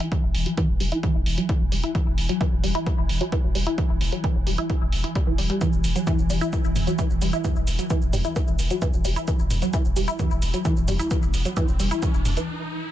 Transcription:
Already playing: synth drone E3
0.00 synth arpeggio sound E4, closed hi-hat
0.12 synth arpeggio sound E3, kick, closed hi-hat
0.23 sub bass E1
0.35 sub bass E1, open hi-hat
0.46 synth arpeggio sound F#3, closed hi-hat
0.57 synth arpeggio sound E3, kick, closed hi-hat
0.69 sub bass E1
0.80 sub bass E1, synth arpeggio sound G3, open hi-hat
0.92 synth arpeggio sound E4, closed hi-hat
1.03 synth arpeggio sound E3, kick, closed hi-hat
1.15 sub bass E1
1.26 sub bass E1, open hi-hat
1.38 synth arpeggio sound F#3, closed hi-hat
1.49 synth arpeggio sound E3, kick, closed hi-hat
1.60 sub bass E1
1.72 sub bass E1, synth arpeggio sound G3, open hi-hat
1.83 synth arpeggio sound E4, closed hi-hat
1.95 synth arpeggio sound E3, kick, closed hi-hat
2.06 sub bass E1
2.18 sub bass E1, open hi-hat
2.29 synth arpeggio sound F#3, closed hi-hat
2.41 synth arpeggio sound E3, kick, closed hi-hat
2.52 sub bass E1
2.64 sub bass E1, synth arpeggio sound G3, open hi-hat
2.75 synth arpeggio sound E4, closed hi-hat
2.86 synth arpeggio sound E3, kick, closed hi-hat
2.98 sub bass E1
3.09 sub bass E1, open hi-hat
3.21 synth arpeggio sound F#3, closed hi-hat
3.32 synth arpeggio sound E3, kick, closed hi-hat
3.44 sub bass E1
3.55 sub bass E1, synth arpeggio sound G3, open hi-hat
3.67 synth arpeggio sound E4, closed hi-hat
3.78 synth arpeggio sound E3, kick, closed hi-hat
3.90 sub bass E1
4.01 sub bass E1, open hi-hat
4.12 synth arpeggio sound F#3, closed hi-hat
4.24 synth arpeggio sound E3, kick, closed hi-hat
4.35 sub bass E1
4.47 sub bass E1, synth arpeggio sound G3, open hi-hat
4.58 synth arpeggio sound E4, closed hi-hat
4.70 synth arpeggio sound E3, kick, closed hi-hat
4.81 sub bass E1
4.92 sub bass E1, open hi-hat
5.04 synth arpeggio sound E4, closed hi-hat
5.15 synth arpeggio sound G3, kick, closed hi-hat
5.27 sub bass E1, synth arpeggio sound E3
5.38 sub bass E1, synth arpeggio sound G3, open hi-hat
5.50 synth arpeggio sound G3, closed hi-hat
5.61 synth arpeggio sound E3, kick, closed hi-hat, shaker
5.73 sub bass E1, shaker
5.84 sub bass E1, open hi-hat, shaker
5.96 synth arpeggio sound F#3, closed hi-hat, shaker
6.07 synth arpeggio sound E3, kick, closed hi-hat, mid tom, shaker
6.18 sub bass E1, shaker
6.30 sub bass E1, synth arpeggio sound G3, open hi-hat, shaker
6.41 synth arpeggio sound E4, closed hi-hat, shaker
6.53 synth arpeggio sound E3, kick, closed hi-hat, shaker
6.64 sub bass E1, shaker
6.76 sub bass E1, mid tom, open hi-hat, shaker
6.87 synth arpeggio sound F#3, closed hi-hat, shaker
6.99 synth arpeggio sound E3, kick, closed hi-hat, shaker
7.10 sub bass E1, shaker
7.21 sub bass E1, synth arpeggio sound G3, open hi-hat, shaker
7.33 synth arpeggio sound E4, closed hi-hat, shaker
7.44 synth arpeggio sound E3, kick, closed hi-hat, mid tom, shaker
7.56 sub bass E1, shaker
7.67 sub bass E1, open hi-hat, shaker
7.79 synth arpeggio sound F#3, closed hi-hat, shaker
7.90 synth arpeggio sound E3, kick, closed hi-hat, shaker
8.02 sub bass E1, shaker
8.13 sub bass E1, synth arpeggio sound G3, mid tom, open hi-hat, shaker
8.25 synth arpeggio sound E4, closed hi-hat, shaker
8.36 synth arpeggio sound E3, kick, closed hi-hat, shaker
8.47 sub bass E1, shaker
8.59 sub bass E1, open hi-hat, shaker
8.70 synth arpeggio sound F#3, closed hi-hat, shaker
8.82 synth arpeggio sound E3, kick, closed hi-hat, mid tom, shaker
8.93 sub bass E1, shaker
9.05 sub bass E1, synth arpeggio sound G3, open hi-hat, shaker
9.16 synth arpeggio sound E4, closed hi-hat, shaker
9.28 synth arpeggio sound E3, kick, closed hi-hat, riser, shaker
9.39 sub bass E1, shaker
9.51 sub bass E1, mid tom, open hi-hat, shaker
9.62 synth arpeggio sound F#3, closed hi-hat, shaker
9.73 synth arpeggio sound E3, kick, closed hi-hat, shaker
9.85 sub bass E1, shaker
9.96 sub bass E1, synth arpeggio sound G3, open hi-hat, shaker
10.08 synth arpeggio sound E4, closed hi-hat, shaker
10.19 synth arpeggio sound E3, kick, closed hi-hat, mid tom, shaker
10.31 sub bass E1, shaker
10.42 sub bass E1, open hi-hat, shaker
10.54 synth arpeggio sound F#3, closed hi-hat, shaker
10.65 synth arpeggio sound E3, kick, closed hi-hat, shaker
10.77 sub bass E1, shaker
10.88 sub bass E1, synth arpeggio sound G3, mid tom, open hi-hat, shaker
10.99 synth arpeggio sound E4, closed hi-hat, shaker
11.11 synth arpeggio sound E3, kick, closed hi-hat, shaker
11.22 sub bass E1, shaker
11.34 sub bass E1, open hi-hat, shaker
11.45 synth arpeggio sound F#3, closed hi-hat, shaker
11.57 synth arpeggio sound E3, kick, closed hi-hat, mid tom, shaker
11.68 sub bass E1, shaker
11.80 sub bass E1, synth arpeggio sound G3, open hi-hat, shaker
11.91 synth arpeggio sound E4, closed hi-hat, shaker
12.03 synth arpeggio sound E3, kick, closed hi-hat, shaker
12.14 sub bass E1, shaker
12.25 sub bass E1, mid tom, open hi-hat, shaker
12.37 synth arpeggio sound E3, closed hi-hat, shaker

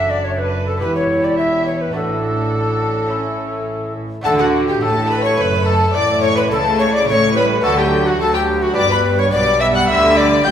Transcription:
Already playing: double bass section F#1, lute F#2 D4 A4, cello section F#2, viola section D4, violin section A4 E5, recorder E5
0.10 recorder D5, violin section D5
0.24 violin section C#5, recorder C#5
0.38 violin section B4, recorder B4
0.67 recorder A4, violin section A4
0.78 double bass section E1, cello section E2, lute B3 E4 G4, viola section E4, violin section G4 B4, recorder B4
0.82 lute E2
0.94 violin section C#5, recorder C#5
1.22 violin section D5, recorder D5
1.36 violin section E5, recorder E5
1.66 violin section C#5, recorder C#5
1.80 violin section B4, recorder B4
1.92 double bass section A1, lute A2 A3 D4 F#4, cello section A2, viola section D4, violin section F#4 A4, recorder A4
3.06 lute A3 C#4 E4, viola section C#4, violin section E4
4.21 double bass section D2, lute D3 A3 D4 F#4, cello section D3, viola section A3, violin section A4 A5
4.25 recorder A4
4.39 violin section F#4 F#5, recorder F#4
4.67 violin section G4 G5, recorder G4
4.81 double bass section A1, lute A2, cello section A2, viola section A3, recorder A4, violin section A4 A5
5.09 violin section B4 B5, recorder B4
5.23 violin section C#5 C#6, recorder C#5
5.37 double bass section F#1, lute F#2, cello section F#2, violin section B4 B5, recorder C#5
5.42 recorder B4
5.65 violin section A4 A5, recorder A4
5.93 double bass section A1, lute A2, cello section A2, viola section A3, violin section D5 D6, recorder D5
6.21 violin section C#5 C#6, recorder C#5
6.35 violin section B4 B5, recorder B4
6.48 double bass section C#2, lute C#3 A3 E4, violin section A4, recorder A4
6.52 cello section C#3, viola section A3, violin section A5
6.78 violin section C#5 C#6, recorder C#5
6.92 violin section D5 D6, recorder D5
7.05 double bass section A1, cello section A2, lute A2, viola section A3, violin section C#5 C#6, recorder C#5
7.34 viola section G3, violin section B4 B5, recorder B4
7.61 double bass section D2, cello section D3, lute D3 A3 D4 F#4, viola section F#3, violin section A4 A5, recorder A4
7.78 violin section G4 G5, recorder G4
8.06 violin section F#4 F#5, recorder F#4
8.20 double bass section D2, cello section D2, lute D2, viola section F#3, violin section A4 A5, recorder A4
8.33 violin section G4 G5, recorder G4
8.62 violin section F#4 F#5, recorder F#4
8.74 double bass section G1, cello section G2, viola section G3, lute D4 B4, violin section D5 D6, recorder D5
8.78 lute G2
8.89 violin section B4 B5, recorder B4
9.18 violin section C#5 C#6, recorder C#5
9.32 double bass section B1, lute B2, cello section B2, viola section G3, violin section D5 D6, recorder D5
9.60 violin section E5 E6, recorder E5
9.74 violin section F#5 F#6, recorder F#5
9.88 double bass section D2, cello section D3, lute D3, recorder E5, violin section E5 E6
10.16 recorder D5, violin section D5 D6
10.44 double bass section A1, lute A2, cello section A2, viola section G3, recorder G5, violin section G5 G6

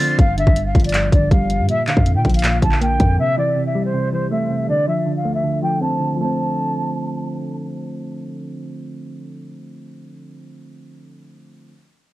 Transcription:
Already playing: pipe organ D3 A3 F4 C5, synth keys F3 A3 C4, flute A6
0.00 synth keys D3
0.19 808-style bass G1, synth keys G2, flute F5, kick, closed hi-hat
0.38 synth keys D3, flute E5, closed hi-hat
0.47 808-style bass G1, kick
0.56 synth keys G2, closed hi-hat
0.66 flute F5
0.75 808-style bass G1, synth keys F3, kick, closed hi-hat
0.80 closed hi-hat
0.84 flute D5, closed hi-hat
0.89 closed hi-hat
0.94 synth keys G2, clap, closed hi-hat
1.12 808-style bass G1, synth keys D3, flute D5, kick, closed hi-hat
1.31 808-style bass G1, synth keys G3, flute F5, kick, closed hi-hat
1.50 synth keys G2, closed hi-hat
1.59 808-style bass G2
1.69 synth keys A#2, flute E5, closed hi-hat
1.87 synth keys D3, flute F5, clap, closed hi-hat
1.97 808-style bass F2, kick
2.06 synth keys A#2, closed hi-hat
2.16 808-style bass A#2, flute G5
2.25 808-style bass A#1, synth keys F3, kick, closed hi-hat
2.30 closed hi-hat
2.34 flute F5, closed hi-hat
2.39 closed hi-hat
2.44 synth keys A#2, clap, closed hi-hat
2.62 808-style bass A#1, synth keys D3, flute A5, kick, closed hi-hat
2.72 clap
2.81 synth keys A#3, flute G5, closed hi-hat
3.00 808-style bass F2, synth keys A#2, kick, closed hi-hat
3.19 synth keys C3, flute E5
3.37 synth keys E3, flute D5
3.56 synth keys C3
3.66 flute E5
3.75 synth keys G3
3.84 flute C5
3.94 synth keys C3
4.12 synth keys E3, flute C5
4.31 synth keys A3, flute E5
4.50 synth keys C3
4.69 synth keys D3, flute D5
4.88 synth keys F3, flute E5
5.06 synth keys D3
5.16 flute F5
5.25 synth keys A3
5.34 flute E5
5.44 synth keys D3
5.62 synth keys F3, flute G5
5.81 synth keys C4, flute A5
6.00 synth keys D3
6.13 synth keys D3 F3
6.19 synth keys A3, flute A5
6.25 synth keys C4

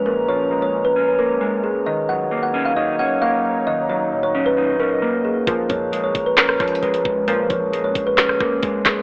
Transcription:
Already playing: clean electric guitar F3 G#3 C#4, ambient pad G#3 C#4 A#5
0.06 clean electric guitar A#2, kalimba A#4
0.28 clean electric guitar F3, kalimba C#5
0.51 clean electric guitar G#3
0.62 kalimba C#5
0.85 kalimba B4
0.96 clean electric guitar C#4
1.19 clean electric guitar A#3, kalimba A#4
1.41 clean electric guitar G#3
1.64 kalimba G#4
1.86 clean electric guitar D#3, ambient pad F#3 D#4 C#5, kalimba D#5
2.09 clean electric guitar F#3, kalimba F#5
2.31 clean electric guitar A#3
2.43 kalimba F#5
2.54 clean electric guitar C#4
2.65 kalimba F5
2.77 clean electric guitar D#4, kalimba D#5
2.99 clean electric guitar C#4, kalimba F#5
3.22 clean electric guitar A#3, kalimba F5
3.67 clean electric guitar D#3, ambient pad D#5, kalimba D#5
3.89 clean electric guitar F#3, kalimba C#5
4.12 clean electric guitar A#2
4.23 kalimba C#5
4.35 clean electric guitar C#4
4.46 kalimba B4
4.57 clean electric guitar D#4
4.80 clean electric guitar C#4, kalimba A#4
5.02 clean electric guitar A#3
5.25 kalimba G#4
5.47 808-style bass A#1, analog polysynth C#2 A#2 F3, clean electric guitar A#2, ambient pad G#3 C#4 A#5, kalimba A#4, kick, closed hi-hat
5.70 808-style bass F2, clean electric guitar F3, kalimba C#5, kick, closed hi-hat
5.92 clean electric guitar G#3, closed hi-hat
6.04 kalimba C#5
6.15 808-style bass A#1, kick, closed hi-hat
6.26 kalimba B4
6.37 clean electric guitar C#4, kalimba A#4, snare, clap, closed hi-hat
6.49 cross-stick
6.60 808-style bass A#1, clean electric guitar F3, kalimba C#5, kick, cross-stick, closed hi-hat
6.68 closed hi-hat
6.75 closed hi-hat
6.83 808-style bass A#1, clean electric guitar G#3, kalimba B4, closed hi-hat
6.94 closed hi-hat
7.05 808-style bass A#1, kick
7.28 analog polysynth C#2 A#2 F3, clean electric guitar A#2, ambient pad G#4, kalimba A#4, closed hi-hat
7.50 808-style bass A#1, clean electric guitar F3, kalimba C#5, kick, closed hi-hat
7.73 clean electric guitar G#3, closed hi-hat
7.84 kalimba C#5
7.95 808-style bass A#1, kick, closed hi-hat
8.07 kalimba B4
8.18 clean electric guitar C#4, snare, clap, closed hi-hat
8.29 cross-stick
8.40 808-style bass A#1, clean electric guitar A#3, kalimba A#4, kick, cross-stick
8.63 808-style bass A#1, clean electric guitar G#3, kick, closed hi-hat
8.85 808-style bass A#1, kalimba G#4, kick, snare, clap, closed hi-hat

